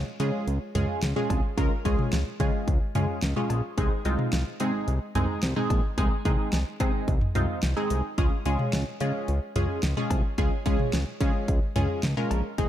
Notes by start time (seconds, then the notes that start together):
0.20 C#3 G#3 C#4 F4 G#4, closed hi-hat
0.47 C#2, closed hi-hat
0.75 C#2 G#3 C#4 F4 G#4, closed hi-hat, mid tom
1.02 C#2, snare, closed hi-hat
1.16 G#3 C#4 F4 G#4, mid tom
1.30 C2, kick, closed hi-hat, cowbell
1.57 C#2 G#3 C#4 F4 A#4, kick, closed hi-hat
1.85 C#2 G#3 C#4 F4 G#4, kick, closed hi-hat
1.99 mid tom
2.13 C#2, snare, closed hi-hat
2.40 C#3 G#3 C#4 F4 G#4, kick, closed hi-hat
2.68 C#2, kick, closed hi-hat
2.95 C#2 G#3 C#4 F4 G#4, closed hi-hat, mid tom
3.22 C#2, snare, closed hi-hat
3.36 G#3 C#4 F4 G#4, mid tom
3.50 A#1, closed hi-hat, cowbell
3.78 C2 G#3 C4 D#4 G#4, kick, closed hi-hat
4.05 C2 G#3 C4 D#4 F4, closed hi-hat
4.19 mid tom
4.33 C2, snare, closed hi-hat
4.60 C3 G#3 C4 D#4 G#4, closed hi-hat
4.88 C2, closed hi-hat
5.15 C2 G#3 C4 D#4 G#4, closed hi-hat, mid tom
5.43 C2, snare, closed hi-hat
5.56 G#3 C4 D#4 G#4, mid tom
5.70 A#1, kick, closed hi-hat, cowbell
5.98 C2 G#3 C4 D#4 G#4, kick, closed hi-hat
6.25 C2 G#3 C4 D#4 G#4, kick, closed hi-hat
6.53 C2, snare, closed hi-hat
6.80 C3 G#3 C4 D#4 G#4, kick, closed hi-hat, cowbell
7.08 C2, kick, closed hi-hat
7.21 mid tom
7.35 C2 G#3 C4 D#4 F4, closed hi-hat, mid tom
7.63 C2, snare, closed hi-hat
7.77 G#3 C4 D#4 G#4
7.90 C2, closed hi-hat
8.18 C#2 G#3 C#4 F4 G#4, kick, closed hi-hat
8.46 C#2 G#3 C#4 F4 G#4, closed hi-hat
8.59 mid tom
8.73 C#2, snare, closed hi-hat
9.00 C#3 G#3 C#4 F4 G#4, closed hi-hat
9.28 C#2, closed hi-hat
9.56 C#2 G#3 C#4 F4 G#4, closed hi-hat, mid tom
9.83 C#2, snare, closed hi-hat
9.97 G#3 C#4 F4 G#4, mid tom
10.10 C2, kick, closed hi-hat, cowbell
10.38 C#2 G#3 C#4 F4 G#4, kick, closed hi-hat
10.66 C#2 G#3 C#4 F4 G#4, kick, closed hi-hat
10.79 mid tom
10.93 C#2, snare, closed hi-hat
11.20 C#3 G#3 C#4 F4 G#4, kick, closed hi-hat
11.48 C#2, kick, closed hi-hat
11.76 C#2 G#3 C#4 F4 G#4, closed hi-hat, mid tom
12.03 C#2, snare, closed hi-hat
12.17 G#3 C#4 F4 A#4, mid tom
12.31 A#1, closed hi-hat, cowbell
12.58 C2 G#3 C4 D#4 G#4, kick, closed hi-hat